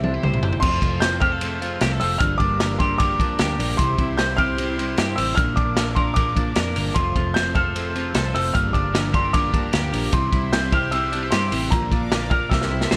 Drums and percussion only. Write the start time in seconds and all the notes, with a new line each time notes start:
0.04 high tom
0.23 mid tom
0.34 mid tom
0.43 floor tom
0.53 floor tom
0.62 kick, crash
0.82 kick, ride
1.02 snare, ride
1.21 kick, ride
1.41 ride
1.62 ride
1.81 snare, ride
2.01 open hi-hat, ride
2.20 kick, hi-hat pedal, ride
2.40 kick, ride
2.60 snare, ride
2.80 kick, ride
3.00 kick, ride
3.20 kick, ride
3.39 snare, ride
3.60 open hi-hat, ride
3.79 kick, hi-hat pedal, ride
3.98 kick, ride
4.19 snare, ride
4.38 kick, ride
4.58 ride
4.79 ride
4.97 snare, ride
5.18 open hi-hat, ride
5.37 kick, hi-hat pedal, ride
5.57 kick, ride
5.77 snare, ride
5.96 kick, ride
6.16 kick, ride
6.37 kick, ride
6.55 snare, ride
6.76 open hi-hat, ride
6.95 kick, hi-hat pedal, ride
7.16 kick, ride
7.36 snare, ride
7.55 kick, ride
7.76 ride
7.96 ride
8.14 snare, ride
8.35 open hi-hat, ride
8.55 kick, hi-hat pedal, ride
8.74 kick, ride
8.95 snare, ride
9.14 kick, ride
9.34 kick, ride
9.54 kick, ride
9.73 snare, ride
9.93 open hi-hat, ride
10.12 kick, hi-hat pedal, ride
10.33 kick, ride
10.53 snare, ride
10.72 kick, ride
10.92 ride
11.13 ride
11.32 snare, ride
11.52 open hi-hat, ride
11.72 kick, hi-hat pedal, ride
11.92 kick, ride
12.12 snare, ride
12.31 kick, ride
12.51 kick, snare
12.61 snare
12.81 snare
12.91 snare